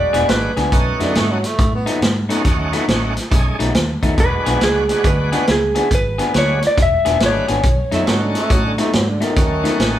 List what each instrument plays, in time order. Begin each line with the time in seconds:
Already playing: tonewheel organ G#3 B3 D4 F#4, electric slide guitar D5
0.13 fingered electric bass E1, clean electric guitar E3 B3 D4 G#4, snare, closed hi-hat
0.28 fingered electric bass G#1, electric slide guitar B4, muted clean electric guitar stroke, snare, closed hi-hat
0.57 fingered electric bass C#2, clean electric guitar E3 B3 D4 G#4, snare, closed hi-hat
0.72 fingered electric bass B1, tonewheel organ A3 C#4 D#4 F#4, muted clean electric guitar stroke, kick, closed hi-hat
1.00 fingered electric bass F#2, clean electric guitar B2 F#3 A3 D#4, tenor saxophone D3, snare, closed hi-hat
1.15 fingered electric bass G#2, tenor saxophone A3, muted clean electric guitar stroke, snare, closed hi-hat
1.31 tenor saxophone F#3
1.44 tenor saxophone A3, muted clean electric guitar stroke, snare, closed hi-hat
1.59 fingered electric bass A2, muted clean electric guitar stroke, kick, closed hi-hat
1.75 tenor saxophone B3
1.86 clean electric guitar B2 F#3 A3 D#4, snare, closed hi-hat
2.01 fingered electric bass G#2, muted clean electric guitar stroke, snare, closed hi-hat
2.29 clean electric guitar B2 F#3 A3 D#4, tonewheel organ A3 C#4 D#4 F#4, snare, closed hi-hat
2.45 fingered electric bass D#2, muted clean electric guitar stroke, kick, closed hi-hat
2.73 clean electric guitar B2 F#3 A3 D#4, snare, closed hi-hat
2.88 fingered electric bass A1, tonewheel organ A3 C#4 D#4 F#4, muted clean electric guitar stroke, snare, closed hi-hat
3.16 muted clean electric guitar stroke, snare, closed hi-hat
3.31 fingered electric bass B1, tonewheel organ A3 C#4 D#4 G#4, muted clean electric guitar stroke, kick, closed hi-hat
3.59 fingered electric bass B1, clean electric guitar B2 F#3 A3 D#4, snare, closed hi-hat
3.75 fingered electric bass D#2, muted clean electric guitar stroke, snare, closed hi-hat
4.03 fingered electric bass D#2, clean electric guitar B2 F#3 A3 D#4, kick, snare, closed hi-hat
4.17 fingered electric bass E1, tonewheel organ G#3 B3 D4 F#4, electric slide guitar B4, muted clean electric guitar stroke, kick, closed hi-hat
4.46 fingered electric bass B1, clean electric guitar E3 B3 D4 G#4, snare, closed hi-hat
4.61 fingered electric bass C#2, electric slide guitar G#4, muted clean electric guitar stroke, snare, closed hi-hat
4.89 tonewheel organ G#3 B3 D4 F#4, muted clean electric guitar stroke, snare, closed hi-hat
5.04 fingered electric bass D2, electric slide guitar B4, muted clean electric guitar stroke, kick, closed hi-hat
5.32 clean electric guitar E3 B3 D4 G#4, tonewheel organ G#3 B3 D4 F#4, snare, closed hi-hat
5.47 fingered electric bass C#2, muted clean electric guitar stroke, snare, closed hi-hat
5.51 electric slide guitar G#4
5.75 clean electric guitar E3 B3 D4 G#4, snare, closed hi-hat
5.91 fingered electric bass G#1, muted clean electric guitar stroke, kick, closed hi-hat
5.95 electric slide guitar B4
6.18 clean electric guitar E3 B3 D4 G#4, snare, closed hi-hat
6.33 fingered electric bass D2, tonewheel organ G#3 B3 D4 F#4, muted clean electric guitar stroke, snare, closed hi-hat
6.38 electric slide guitar C#5
6.62 muted clean electric guitar stroke, snare, closed hi-hat
6.67 electric slide guitar D5
6.77 fingered electric bass E1, muted clean electric guitar stroke, kick, closed hi-hat
6.82 electric slide guitar E5
7.05 fingered electric bass E1, clean electric guitar E3 B3 D4 G#4, snare, closed hi-hat
7.20 fingered electric bass G#1, tonewheel organ G#3 B3 D4 F#4, muted clean electric guitar stroke, snare, closed hi-hat
7.26 electric slide guitar C#5
7.48 fingered electric bass G#1, clean electric guitar E3 B3 D4 G#4, snare, closed hi-hat
7.63 fingered electric bass B1, muted clean electric guitar stroke, kick, closed hi-hat
7.91 fingered electric bass F#2, clean electric guitar B2 F#3 A3 D#4, tenor saxophone A3, snare, closed hi-hat
8.06 fingered electric bass G#2, tenor saxophone F#3, tonewheel organ C#4 D#4 F#4 A4, muted clean electric guitar stroke, snare, closed hi-hat
8.22 tenor saxophone D3
8.35 tenor saxophone A3, muted clean electric guitar stroke, snare, closed hi-hat
8.50 fingered electric bass A2, tenor saxophone F#3, muted clean electric guitar stroke, kick, closed hi-hat
8.65 tenor saxophone D3
8.78 clean electric guitar B2 F#3 A3 D#4, tenor saxophone A3, snare, closed hi-hat
8.93 fingered electric bass G#2, tenor saxophone F#3, muted clean electric guitar stroke, snare, closed hi-hat
9.09 tenor saxophone D3
9.21 clean electric guitar B2 F#3 A3 D#4, tenor saxophone D#3, snare, closed hi-hat
9.36 fingered electric bass D#2, tonewheel organ A3 C#4 D#4 F#4, muted clean electric guitar stroke, kick, snare, closed hi-hat
9.64 clean electric guitar B2 F#3 A3 D#4, snare, closed hi-hat
9.79 fingered electric bass A1, muted clean electric guitar stroke, snare, closed hi-hat